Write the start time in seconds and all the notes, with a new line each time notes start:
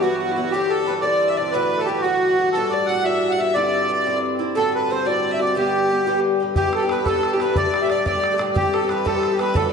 Already playing: G2 E3
0.01 G2 F#3 B3 E4 F#4
0.15 G4
0.20 F#4
0.31 E4
0.36 F#3 B3 E4 F#4
0.51 G2 D3 C4 G4
0.55 D4
0.69 A4
0.86 G2 D3 C4 D4 B4
1.00 D3 C4 D4 D5
1.05 G2
1.28 E5
1.36 C4 D4 D5
1.40 D3
1.51 A2 D3 A3 F#4 B4
1.77 A4
1.81 G4 A4
1.87 A2 D3 A3 F#4 G4
2.01 F#4
2.05 A2 D3 A3
2.38 D3 A3 F#4
2.52 G2 A2 G3 A4
2.56 E3 D4 F#4
2.69 D5
2.86 A2 E3 F#5
2.91 D4 F#4
3.03 A2 E3 D4 F#4 E5
3.30 F#5
3.37 E3 D4 F#4 E5
3.54 G2 D3 C4 E4 D5
3.88 G2 D3 C4 E4
4.05 G2 D3 C4 E4
4.39 D3 C4 E4
4.55 A2 D3 C4 F#4 A4
4.74 B4
4.90 A2 D3 C4 F#4 C5
5.05 A2 D3 C4 F#4 D5
5.31 E5
5.39 D3 C4 F#4 D5
5.55 G2 D3 B3 G4
5.89 G2 D3 B3 G4
6.07 G2 D3 B3 G4
6.40 D3 B3 G4
6.55 G2 E3 G3 B3 G4, bodhran
6.67 E3 B3 G4
6.73 A4, bodhran
6.83 E3 B3 G4
6.89 G2 E3 B3 G4 B4, bodhran
7.05 G2 E3 B3 G4 A4, bodhran
7.16 E3 B3 G4
7.23 bodhran
7.33 E3 B3 G4
7.40 G2 E3 B3 G4 B4, bodhran
7.55 A2 D3 A3 G4 D5, bodhran
7.66 D3 A3 G4
7.74 bodhran
7.82 D3 A3 G4 E5
7.90 A2 D3 A3 G4 D5, bodhran
8.06 A2 D3 A3 G4 D5, bodhran
8.15 D3 A3 G4
8.24 bodhran
8.31 D3 A3 G4
8.38 A2 D3 A3 G4, bodhran
8.55 G2 E3 C4 G4, bodhran
8.63 E3 C4 G4
8.73 A4, bodhran
8.81 E3 C4 G4
8.89 G2 E3 C4 G4 B4, bodhran
9.05 G2 E3 C4 G4 A4, bodhran
9.14 E3 C4 G4
9.23 bodhran
9.31 E3 C4 G4
9.39 G2 E3 C4 G4 B4, bodhran
9.54 A2 E3 D4 F#4 A4, bodhran
9.63 E3 D4 F#4
9.69 D5